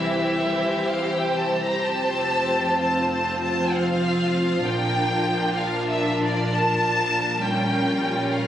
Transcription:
0.00 1.62 C2 soft
0.00 1.63 C2 soft
0.00 1.66 E3 soft
0.00 1.66 E4 soft
0.00 2.78 G4 soft
0.00 4.67 C5 soft
0.00 0.88 E5 soft
0.88 1.13 F5 soft
1.14 1.38 G5 soft
1.38 1.63 A5 soft
1.63 1.87 A#5 soft
1.86 4.63 F1 soft
1.86 4.63 F2 soft
1.86 7.39 F3 soft
1.86 4.63 C4 soft
1.86 2.80 A5 medium
2.81 7.43 F4 soft
2.81 3.10 A5 medium
3.11 3.42 A5 soft
3.43 3.74 A5 medium
3.75 4.67 F5 medium
4.65 8.47 A#1 soft
4.65 8.47 A#2 soft
4.65 7.40 D4 soft
4.65 8.47 A#4 soft
4.65 5.57 G5 medium
5.57 5.89 F5 medium
5.90 6.23 E5 medium
6.24 6.56 D5 medium
6.55 7.44 A5 medium
7.42 8.47 G3 soft
7.42 8.47 C#4 soft
7.42 8.47 F4 soft
7.42 8.32 G5 medium
8.32 8.47 F5 medium

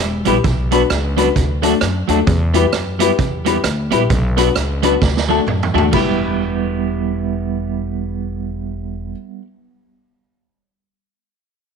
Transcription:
0.00 0.22 E1 loud
0.25 0.41 A#1 medium
0.25 0.36 G3 medium
0.25 0.36 B3 medium
0.25 0.37 E4 medium
0.25 0.36 E4 medium
0.25 0.37 G4 medium
0.25 0.36 G4 medium
0.25 0.36 B4 loud
0.25 closed hi-hat medium
0.44 0.83 B1 loud
0.44 kick loud
0.44 closed hi-hat medium
0.71 0.82 F#3 medium
0.71 0.81 B3 loud
0.71 0.82 B3 medium
0.71 0.81 D4 medium
0.71 0.82 D4 medium
0.71 0.82 F#4 medium
0.71 0.82 B4 loud
0.71 closed hi-hat loud
0.90 1.29 C#2 loud
0.90 cross-stick loud
0.90 closed hi-hat medium
1.17 1.27 F#3 medium
1.17 1.27 B3 medium
1.17 1.28 B3 medium
1.17 1.27 D4 medium
1.17 1.28 D4 loud
1.17 1.27 F#4 medium
1.17 1.28 F#4 loud
1.17 1.27 B4 loud
1.17 closed hi-hat loud
1.35 1.75 D2 medium
1.35 muted clean electric guitar stroke medium
1.35 kick loud
1.35 closed hi-hat medium
1.62 1.73 F#3 medium
1.62 1.72 A3 medium
1.62 1.73 A3 medium
1.62 1.73 D4 medium
1.62 1.73 D4 loud
1.62 1.73 F#4 medium
1.62 1.74 F#4 medium
1.62 1.73 A4 loud
1.62 closed hi-hat loud
1.81 2.05 F#2 medium
1.81 cross-stick loud
1.81 closed hi-hat medium
2.08 2.24 D#2 medium
2.08 2.19 F#3 medium
2.08 2.19 A3 medium
2.08 2.18 A3 medium
2.08 2.19 D4 loud
2.08 2.18 D4 medium
2.08 2.19 F#4 medium
2.08 2.19 A4 medium
2.08 closed hi-hat medium
2.27 2.66 E2 loud
2.27 kick loud
2.27 closed hi-hat medium
2.54 2.65 G3 medium
2.54 2.65 B3 loud
2.54 2.64 B3 loud
2.54 2.65 E4 medium
2.54 2.64 E4 medium
2.54 2.65 G4 loud
2.54 2.65 G4 medium
2.54 2.65 B4 loud
2.54 closed hi-hat loud
2.73 3.12 F#2 medium
2.73 cross-stick loud
2.73 closed hi-hat medium
2.99 3.10 G3 medium
2.99 3.10 B3 medium
2.99 3.10 B3 loud
2.99 3.11 E4 medium
2.99 3.10 E4 medium
2.99 3.11 G4 loud
2.99 3.10 G4 medium
2.99 3.10 B4 loud
2.99 closed hi-hat loud
3.18 3.57 E2 medium
3.18 3.25 G4 soft
3.18 3.24 B4 soft
3.18 muted clean electric guitar stroke soft
3.18 kick loud
3.18 closed hi-hat medium
3.45 3.56 G3 medium
3.45 3.56 B3 medium
3.45 3.56 B3 loud
3.45 3.56 E4 medium
3.45 3.57 G4 medium
3.45 3.56 G4 medium
3.45 3.56 B4 loud
3.45 closed hi-hat loud
3.64 3.88 D2 loud
3.64 muted clean electric guitar stroke soft
3.64 cross-stick loud
3.64 closed hi-hat medium
3.91 4.07 A#1 loud
3.91 4.02 G3 medium
3.91 4.01 B3 medium
3.91 4.02 B3 medium
3.91 4.02 E4 loud
3.91 4.01 E4 medium
3.91 4.02 G4 loud
3.91 4.02 G4 medium
3.91 4.02 B4 loud
3.91 closed hi-hat medium
4.10 4.49 B1 loud
4.10 kick loud
4.10 closed hi-hat medium
4.37 4.48 F#3 medium
4.37 4.47 B3 loud
4.37 4.48 B3 medium
4.37 4.47 D4 medium
4.37 4.48 D4 loud
4.37 4.47 F#4 medium
4.37 4.48 F#4 loud
4.37 4.47 B4 loud
4.37 closed hi-hat loud
4.55 4.95 C#2 loud
4.55 cross-stick loud
4.55 closed hi-hat medium
4.83 4.93 F#3 medium
4.83 4.93 B3 loud
4.83 4.94 B3 loud
4.83 4.93 D4 medium
4.83 4.94 D4 medium
4.83 4.93 F#4 medium
4.83 4.94 F#4 loud
4.83 4.93 B4 loud
4.83 closed hi-hat loud
5.01 5.40 D2 medium
5.01 muted clean electric guitar stroke soft
5.01 kick loud
5.01 snare medium
5.17 snare medium
5.29 5.39 F#3 medium
5.29 5.39 A3 medium
5.29 5.40 A3 medium
5.29 5.39 D4 medium
5.29 5.40 D4 loud
5.29 5.39 F#4 medium
5.29 5.40 F#4 loud
5.29 5.39 A4 loud
5.47 5.70 F#2 loud
5.47 mid tom medium
5.63 floor tom medium
5.74 5.90 D#2 medium
5.74 5.85 F#3 medium
5.74 5.84 A3 loud
5.74 5.85 A3 medium
5.74 5.84 D4 medium
5.74 5.86 D4 medium
5.74 5.84 F#4 medium
5.74 5.86 F#4 medium
5.74 5.85 A4 medium
5.74 floor tom medium
5.92 9.12 E1 loud
5.92 9.42 G3 medium
5.92 9.11 B3 medium
5.92 9.44 B3 medium
5.92 9.12 E4 medium
5.92 9.45 E4 medium
5.92 9.12 G4 medium
5.92 9.12 B4 loud
5.92 kick loud
5.92 crash medium
5.97 9.47 G4 medium

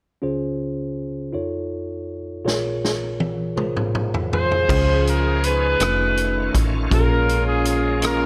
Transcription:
0.22 1.30 C#2 soft
0.22 1.30 C#3 soft
0.22 1.05 C#4 medium
0.22 1.06 F4 soft
0.22 1.06 G#4 medium
0.22 1.06 C5 medium
1.33 2.41 F2 soft
1.33 2.17 D#4 medium
1.33 2.17 F4 soft
1.33 2.17 A4 soft
1.33 2.18 C#5 medium
2.45 4.64 A#1 medium
2.45 4.64 A#2 medium
2.45 3.28 F4 medium
2.45 3.28 G#4 medium
2.45 3.29 A#4 medium
2.45 3.29 C#5 medium
2.45 snare soft
2.85 snare soft
3.20 high tom medium
3.56 4.40 F4 soft
3.56 4.40 G#4 soft
3.56 4.40 A#4 soft
3.56 4.40 C5 medium
3.56 mid tom medium
3.77 mid tom medium
3.95 mid tom medium
4.14 floor tom medium
4.33 5.39 F4 medium
4.33 5.40 G#4 medium
4.33 5.02 C5 medium
4.33 floor tom medium
4.52 floor tom medium
4.68 5.76 C#2 loud
4.68 5.76 C#3 medium
4.68 5.79 F3 medium
4.68 5.79 G#3 soft
4.68 8.26 C#4 medium
4.68 5.51 C#4 medium
4.68 5.51 F4 medium
4.68 5.78 G#4 medium
4.68 5.52 G#4 medium
4.68 5.52 C5 medium
4.68 kick medium
4.68 crash medium
5.07 5.44 A#4 medium
5.07 closed hi-hat soft
5.44 6.51 D#4 soft
5.44 6.51 G#4 medium
5.44 6.55 B4 medium
5.44 closed hi-hat medium
5.79 6.50 F1 medium
5.79 6.90 D#3 medium
5.79 6.63 A3 medium
5.79 6.90 A3 medium
5.79 6.62 C#4 soft
5.79 6.63 D#4 soft
5.79 6.90 F4 medium
5.79 6.63 F4 soft
5.79 cross-stick loud
5.79 closed hi-hat medium
6.17 closed hi-hat soft
6.55 6.88 A1 medium
6.55 kick medium
6.55 closed hi-hat medium
6.90 8.26 A#1 medium
6.90 7.98 A#2 medium
6.90 8.26 F3 medium
6.90 8.26 G#3 medium
6.90 7.74 A#3 medium
6.90 8.26 A#3 medium
6.90 7.74 C#4 medium
6.90 7.99 C#4 medium
6.90 7.74 F4 medium
6.90 7.99 F4 medium
6.90 6.98 G4 medium
6.90 7.44 A#4 medium
6.90 kick medium
6.90 closed hi-hat medium
6.99 7.78 G#4 medium
7.29 closed hi-hat soft
7.48 7.66 G#4 medium
7.65 8.01 G#4 medium
7.65 closed hi-hat medium
8.02 8.26 A#3 medium
8.02 8.26 C#4 soft
8.02 8.26 C#4 medium
8.02 8.26 F4 soft
8.02 8.26 F4 medium
8.02 8.26 A#4 medium
8.02 cross-stick loud
8.02 closed hi-hat medium

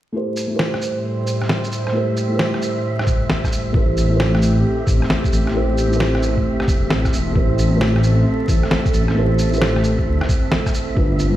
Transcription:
0.12 3.71 A2 medium
0.12 3.72 G3 medium
0.12 0.46 A3 medium
0.12 0.48 E4 medium
0.12 0.48 G4 medium
0.12 3.71 C5 medium
0.12 3.73 E5 medium
0.16 0.49 C5 medium
0.37 shaker medium
0.47 1.91 A3 medium
0.47 1.92 E4 medium
0.53 1.93 G4 medium
0.53 1.95 C5 medium
0.59 snare medium
0.74 cross-stick soft
0.82 shaker medium
1.27 shaker medium
1.42 cross-stick soft
1.49 snare medium
1.64 shaker soft
1.72 shaker medium
1.87 cross-stick soft
1.92 2.26 A3 medium
1.92 2.28 E4 medium
1.92 2.29 G4 medium
1.96 2.29 C5 medium
2.17 shaker medium
2.28 3.71 A3 medium
2.28 3.72 E4 medium
2.33 3.74 G4 medium
2.33 3.75 C5 medium
2.39 snare medium
2.54 cross-stick soft
2.62 shaker medium
2.99 cross-stick medium
3.07 kick loud
3.07 shaker medium
3.30 snare loud
3.44 kick medium
3.44 cross-stick soft
3.44 shaker soft
3.52 shaker medium
3.72 4.64 A1 medium
3.72 4.06 A3 medium
3.72 10.92 A3 medium
3.72 10.92 C4 medium
3.72 4.08 E4 medium
3.72 7.32 G4 medium
3.72 4.09 G4 medium
3.72 11.37 E5 medium
3.72 kick loud
3.76 4.09 C5 medium
3.97 shaker medium
4.08 5.51 A3 medium
4.08 5.52 E4 medium
4.13 5.54 G4 medium
4.13 5.55 C5 medium
4.20 snare loud
4.35 cross-stick soft
4.42 shaker medium
4.87 5.01 A1 medium
4.87 kick loud
4.87 shaker medium
5.02 cross-stick soft
5.10 snare loud
5.24 kick medium
5.24 shaker soft
5.32 5.54 A1 medium
5.32 shaker medium
5.47 cross-stick soft
5.53 6.44 A1 loud
5.53 5.86 A3 medium
5.53 5.89 E4 medium
5.53 5.89 G4 medium
5.53 5.90 C5 medium
5.78 shaker medium
5.88 7.31 A3 medium
5.88 7.33 E4 medium
5.92 7.34 G4 medium
5.92 7.35 C5 medium
5.92 shaker soft
6.00 cross-stick medium
6.00 snare loud
6.15 cross-stick soft
6.23 shaker medium
6.37 kick medium
6.60 cross-stick medium
6.68 6.89 E1 medium
6.68 kick loud
6.68 shaker medium
6.90 7.15 A1 loud
6.90 snare loud
7.05 kick medium
7.05 cross-stick soft
7.05 shaker soft
7.13 7.35 E1 loud
7.13 shaker medium
7.33 8.25 A1 loud
7.33 7.67 A3 medium
7.33 7.69 E4 medium
7.33 7.70 G4 medium
7.33 10.93 A4 medium
7.33 kick loud
7.37 7.70 C5 medium
7.59 shaker medium
7.69 9.12 A3 medium
7.69 9.13 E4 medium
7.74 9.15 G4 medium
7.74 9.16 C5 medium
7.81 snare loud
7.96 cross-stick soft
8.04 shaker medium
8.48 8.62 A1 medium
8.48 kick loud
8.48 shaker medium
8.63 cross-stick soft
8.71 snare loud
8.86 kick loud
8.86 shaker soft
8.94 9.15 A1 loud
8.94 shaker medium
9.08 cross-stick soft
9.14 10.08 A1 medium
9.14 9.47 A3 medium
9.14 9.50 E4 medium
9.14 9.50 G4 medium
9.18 9.51 C5 medium
9.39 shaker medium
9.49 10.93 A3 medium
9.49 10.94 E4 medium
9.53 10.95 G4 medium
9.53 10.97 C5 medium
9.53 shaker soft
9.62 cross-stick medium
9.62 snare loud
9.76 cross-stick soft
9.84 shaker medium
9.99 kick medium
10.06 10.20 D2 medium
10.21 cross-stick medium
10.29 kick loud
10.29 shaker medium
10.52 snare loud
10.66 kick medium
10.66 cross-stick soft
10.66 shaker soft
10.74 shaker medium
10.94 11.37 G1 loud
10.94 11.28 G3 medium
10.94 11.37 G3 medium
10.94 11.30 D4 medium
10.94 11.31 F4 medium
10.94 11.37 F4 medium
10.94 11.37 B4 medium
10.94 11.31 B4 medium
10.94 kick loud
11.19 shaker medium
11.30 11.37 G3 medium
11.30 11.37 D4 medium

